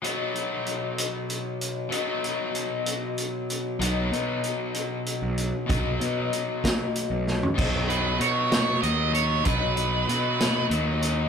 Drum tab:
CC |------------|------------|------------|------------|
HH |x-x-x-x-x-x-|x-x-x-x-x-x-|x-x-x-x-x-x-|x-x-x-x-x---|
SD |------------|------------|------------|------o---o-|
FT |------------|------------|------------|-----------o|
BD |------------|------------|------------|o-----o-----|

CC |x-----------|------------|
HH |--x-x-x-x-x-|x-x-x-x-x-x-|
SD |------o-----|------o-----|
FT |------------|------------|
BD |o-----------|o-----------|